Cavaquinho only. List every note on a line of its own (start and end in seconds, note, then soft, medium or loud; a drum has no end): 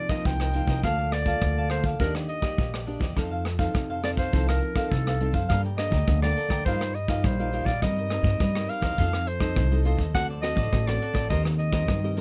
0.09 0.39 A#4 medium
0.09 0.39 C5 medium
0.09 0.38 D#5 medium
0.40 0.53 A#4 soft
0.40 0.54 C5 soft
0.40 0.53 D#5 soft
0.54 0.68 F4 soft
0.54 0.68 A#4 soft
0.54 0.68 C5 medium
0.54 0.67 D#5 soft
0.68 0.82 A#4 medium
0.68 0.83 C5 medium
0.68 0.82 D#5 medium
0.84 0.97 A#4 medium
0.84 0.97 D5 medium
0.84 0.98 F5 medium
0.84 0.97 A5 medium
0.99 1.12 D5 soft
0.99 1.13 F5 soft
0.99 1.12 A5 soft
1.13 muted cavaquinho stroke soft
1.27 1.56 D5 medium
1.27 1.56 F5 medium
1.27 1.55 A5 medium
1.58 1.70 D5 soft
1.58 1.71 F5 soft
1.58 1.71 A5 soft
1.71 1.85 A#4 medium
1.71 1.85 D5 soft
1.71 1.84 F5 soft
1.71 1.83 A5 medium
1.84 1.99 D5 medium
1.84 1.99 F5 medium
1.84 1.98 A5 medium
2.00 2.14 D4 medium
2.00 2.14 G4 medium
2.00 2.14 D5 medium
2.00 2.14 D#5 medium
2.16 2.28 G4 soft
2.16 2.29 D5 soft
2.16 2.28 D#5 soft
2.29 muted cavaquinho stroke soft
2.42 2.72 G4 medium
2.42 2.71 D5 medium
2.42 2.72 D#5 medium
2.73 2.86 G4 soft
2.73 2.87 D5 soft
2.73 2.86 D#5 soft
2.86 3.00 D4 soft
2.86 3.01 G4 soft
2.86 3.00 D5 medium
2.86 3.01 D#5 soft
3.01 3.16 G4 medium
3.01 3.15 D5 medium
3.01 3.16 D#5 medium
3.16 3.30 D#4 medium
3.16 3.30 A4 medium
3.16 3.30 C5 medium
3.16 3.30 F5 medium
3.31 3.44 A4 soft
3.31 3.44 C5 soft
3.31 3.44 F5 soft
3.45 muted cavaquinho stroke soft
3.59 3.88 A4 medium
3.59 3.88 C5 medium
3.59 3.88 F5 medium
3.90 4.02 A4 soft
3.90 4.03 C5 soft
3.90 4.03 F5 medium
4.03 4.17 D#4 soft
4.03 4.17 A4 soft
4.03 4.17 C5 soft
4.03 4.16 F5 soft
4.17 4.32 A4 medium
4.17 4.32 C5 medium
4.17 4.31 F5 medium
4.32 4.46 D#4 medium
4.32 4.47 A4 medium
4.32 4.47 C5 medium
4.32 4.46 F5 medium
4.47 4.61 A4 soft
4.47 4.61 C5 soft
4.47 4.61 F5 soft
4.61 muted cavaquinho stroke soft
4.76 5.05 A4 medium
4.76 5.05 C5 medium
4.76 5.04 F5 medium
5.07 5.19 A4 soft
5.07 5.20 C5 soft
5.07 5.20 F5 soft
5.20 5.34 D#4 soft
5.20 5.34 A4 soft
5.20 5.33 C5 soft
5.20 5.33 F5 soft
5.34 5.48 A4 medium
5.34 5.48 C5 medium
5.34 5.48 F5 medium
5.50 5.63 A4 medium
5.50 5.63 D5 medium
5.50 5.63 G5 medium
5.50 5.63 A#5 medium
5.65 5.78 D5 soft
5.65 5.78 G5 soft
5.65 5.78 A#5 soft
5.78 5.92 A4 soft
5.78 5.92 D5 medium
5.78 5.92 G5 soft
5.78 5.91 A#5 soft
5.93 6.22 D5 medium
5.93 6.21 G5 medium
5.93 6.21 A#5 medium
6.23 6.36 D5 soft
6.23 6.36 G5 soft
6.23 6.36 A#5 soft
6.37 6.50 A4 soft
6.37 6.50 D5 soft
6.37 6.50 G5 medium
6.37 6.49 A#5 medium
6.50 6.65 D5 medium
6.50 6.64 G5 medium
6.50 6.64 A#5 medium
6.66 6.79 F4 medium
6.66 6.80 G4 medium
6.66 6.80 D#5 medium
6.66 6.80 F5 medium
6.82 muted cavaquinho stroke soft
6.94 muted cavaquinho stroke soft
7.09 7.38 G4 medium
7.09 7.37 D#5 medium
7.09 7.37 F5 medium
7.39 7.52 G4 soft
7.39 7.53 D#5 soft
7.39 7.52 F5 soft
7.53 7.66 F4 medium
7.53 7.66 G4 medium
7.53 7.66 D#5 medium
7.53 7.66 F5 medium
7.67 7.81 G4 soft
7.67 7.81 D#5 soft
7.67 7.81 F5 soft
7.82 7.96 D#4 medium
7.82 7.96 A#4 medium
7.82 7.96 C5 medium
7.82 7.96 D#5 medium
7.98 8.11 A#4 soft
7.98 8.11 C5 soft
7.98 8.11 D#5 soft
8.12 8.25 D#4 medium
8.12 8.25 A#4 soft
8.12 8.24 C5 medium
8.12 8.23 D#5 medium
8.24 8.54 A#4 medium
8.24 8.53 C5 medium
8.24 8.53 D#5 medium
8.55 8.68 A#4 soft
8.55 8.69 C5 soft
8.55 8.68 D#5 soft
8.69 8.82 D#4 soft
8.69 8.82 A#4 medium
8.69 8.81 C5 soft
8.69 8.81 D#5 medium
8.82 8.97 A#4 medium
8.82 8.97 C5 medium
8.82 8.96 D#5 medium
8.98 9.12 F4 medium
8.98 9.12 A4 medium
8.98 9.12 C5 medium
8.98 9.12 D#5 medium
9.14 muted cavaquinho stroke soft
9.27 muted cavaquinho stroke soft
9.40 9.70 A4 medium
9.40 9.69 C5 medium
9.40 9.69 D#5 medium
9.72 9.85 A4 soft
9.72 9.85 C5 soft
9.72 9.85 D#5 soft
9.85 9.99 F4 medium
9.85 9.99 A4 medium
9.85 9.99 C5 medium
9.85 9.98 D#5 medium
9.99 10.14 A4 soft
9.99 10.13 C5 soft
9.99 10.13 D#5 soft
10.15 10.28 F#4 medium
10.15 10.28 A4 medium
10.15 10.28 C5 medium
10.15 10.29 D5 medium
10.30 10.42 A4 soft
10.30 10.42 C5 soft
10.30 10.43 D5 soft
10.42 10.56 F#4 soft
10.42 10.56 A4 medium
10.42 10.57 C5 medium
10.42 10.56 D5 medium
10.57 10.86 A4 medium
10.57 10.86 C5 medium
10.57 10.85 D5 medium
10.88 11.01 A4 soft
10.88 11.01 C5 soft
10.88 11.01 D5 soft
11.02 11.15 F#4 soft
11.02 11.15 A4 medium
11.02 11.15 C5 soft
11.02 11.14 D5 medium
11.15 11.30 A4 medium
11.15 11.29 C5 medium
11.15 11.29 D5 medium
11.31 11.44 D#4 medium
11.31 11.44 A#4 medium
11.31 11.45 C5 medium
11.31 11.45 D#5 medium
11.46 muted cavaquinho stroke soft
11.60 muted cavaquinho stroke soft
11.72 12.02 A#4 medium
11.72 12.02 C5 medium
11.72 12.01 D#5 medium
12.04 12.16 A#4 soft
12.04 12.17 C5 soft
12.04 12.17 D#5 soft
12.17 12.21 D#4 medium
12.17 12.21 A#4 medium